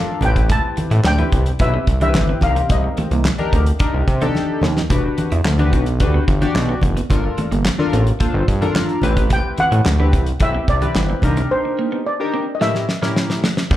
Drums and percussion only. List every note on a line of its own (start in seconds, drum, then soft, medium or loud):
0.21 closed hi-hat medium
0.21 high conga medium
0.21 low conga medium
0.36 kick medium
0.36 closed hi-hat medium
0.49 kick loud
0.49 closed hi-hat loud
0.49 muted conga soft
0.49 low conga medium
0.77 closed hi-hat medium
0.77 muted conga soft
0.77 high conga medium
0.91 closed hi-hat medium
1.04 snare loud
1.04 clap medium
1.18 closed hi-hat soft
1.18 high conga medium
1.32 kick medium
1.32 closed hi-hat medium
1.32 muted conga soft
1.46 closed hi-hat medium
1.59 kick loud
1.59 closed hi-hat loud
1.59 muted conga soft
1.87 kick medium
1.87 closed hi-hat medium
2.01 closed hi-hat medium
2.01 high conga medium
2.15 snare loud
2.15 clap medium
2.15 muted conga soft
2.15 high conga medium
2.41 kick medium
2.41 closed hi-hat medium
2.41 muted conga soft
2.41 high conga medium
2.41 low conga medium
2.56 closed hi-hat medium
2.69 kick loud
2.69 closed hi-hat loud
2.69 muted conga soft
2.69 low conga medium
2.97 closed hi-hat medium
2.97 muted conga soft
2.97 high conga medium
3.11 closed hi-hat medium
3.25 snare loud
3.25 clap medium
3.25 muted conga soft
3.38 closed hi-hat soft
3.38 high conga medium
3.53 kick medium
3.53 closed hi-hat medium
3.66 closed hi-hat medium
3.79 kick loud
3.79 closed hi-hat medium
4.08 kick loud
4.08 closed hi-hat medium
4.08 muted conga soft
4.21 closed hi-hat medium
4.21 high conga medium
4.35 snare medium
4.35 muted conga soft
4.35 high conga medium
4.62 snare medium
4.62 high conga medium
4.62 low conga medium
4.77 snare medium
4.90 kick loud
4.90 closed hi-hat loud
4.90 low conga medium
5.18 closed hi-hat medium
5.18 muted conga soft
5.18 high conga medium
5.32 closed hi-hat soft
5.45 snare loud
5.45 clap medium
5.59 closed hi-hat soft
5.59 high conga medium
5.73 kick medium
5.73 closed hi-hat medium
5.86 closed hi-hat medium
6.00 kick loud
6.00 closed hi-hat medium
6.28 kick medium
6.28 closed hi-hat medium
6.28 muted conga soft
6.42 closed hi-hat medium
6.42 high conga medium
6.55 snare loud
6.55 clap loud
6.55 high conga medium
6.82 kick medium
6.82 closed hi-hat medium
6.82 muted conga soft
6.82 high conga medium
6.82 low conga medium
6.97 closed hi-hat medium
7.10 kick loud
7.10 closed hi-hat loud
7.10 muted conga soft
7.10 low conga medium
7.38 closed hi-hat medium
7.38 high conga medium
7.52 closed hi-hat medium
7.65 snare loud
7.65 clap medium
7.65 muted conga soft
7.79 high conga medium
7.92 closed hi-hat medium
7.92 muted conga soft
8.07 closed hi-hat medium
8.20 kick loud
8.20 closed hi-hat medium
8.48 kick medium
8.48 closed hi-hat medium
8.62 closed hi-hat soft
8.62 high conga medium
8.75 snare loud
8.75 clap medium
8.75 muted conga soft
8.75 high conga medium
8.89 closed hi-hat soft
9.02 closed hi-hat medium
9.02 high conga medium
9.02 low conga medium
9.17 kick medium
9.17 closed hi-hat medium
9.30 kick loud
9.30 closed hi-hat loud
9.30 low conga medium
9.58 closed hi-hat medium
9.58 muted conga soft
9.58 high conga medium
9.72 closed hi-hat medium
9.85 snare loud
9.85 clap medium
9.85 muted conga soft
9.99 high conga medium
10.12 kick medium
10.12 closed hi-hat medium
10.12 muted conga soft
10.26 closed hi-hat medium
10.40 kick loud
10.40 closed hi-hat loud
10.40 muted conga soft
10.68 kick loud
10.68 closed hi-hat medium
10.68 muted conga soft
10.82 closed hi-hat medium
10.82 high conga medium
10.95 snare loud
10.95 clap medium
10.95 muted conga soft
10.95 high conga medium
11.22 kick medium
11.22 closed hi-hat medium
11.22 muted conga soft
11.22 high conga medium
11.22 low conga medium
11.37 closed hi-hat medium
12.61 snare medium
12.75 snare soft
12.89 snare medium
13.03 snare medium
13.16 snare medium
13.30 snare medium
13.44 snare medium
13.57 snare medium
13.71 kick loud
13.71 crash loud
13.71 low conga medium